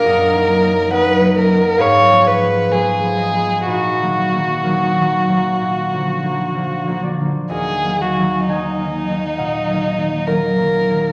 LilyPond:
<<
  \new Staff \with { instrumentName = "Violin" } { \time 4/4 \key ees \minor \tempo 4 = 65 bes'4 ces''8 bes'8 des''8 ces''8 aes'4 | ges'2.~ ges'8 r8 | aes'8 ges'8 ees'2 bes'4 | }
  \new Staff \with { instrumentName = "Harp" } { \time 4/4 \key ees \minor << { <ees'' f''>4 ges''4 f''4. ees''8 | ces''4 bes'2~ bes'8 d''8 | ees''4 aes''4 ges''2 | } \\ { <ges' bes'>4 <bes' ees''>4 <aes' ces''>2 | <ees' ges'>4 <ees' ges'>2 r4 | <ges' bes'>4 ees''4 <bes' ees''>2 | } >> }
  \new Staff \with { instrumentName = "Harp" } { \clef bass \time 4/4 \key ees \minor \tuplet 3/2 { <ges, bes>8 <ges bes ees'>8 <ges bes ees'>8 <ges bes ees'>8 <ges bes ees'>8 <ges bes ees'>8 aes,8 <f aes ces'>8 <f aes ces'>8 <f aes ces'>8 <f aes ces'>8 <f aes ces'>8 } | \tuplet 3/2 { bes,8 <ees ges bes>8 <ees ges bes>8 <ees ges bes>8 <ees ges bes>8 <ees ges bes>8 bes,8 <d f bes>8 <d f bes>8 <d f bes>8 <d f bes>8 <d f bes>8 } | \tuplet 3/2 { ees,8 <ees ges bes>8 <ees ges bes>8 <ees ges bes>8 <ees ges bes>8 <ees ges bes>8 bes,8 <ees ges bes>8 <ees ges bes>8 <ees ges bes>8 <ees ges bes>8 <ees ges bes>8 } | }
>>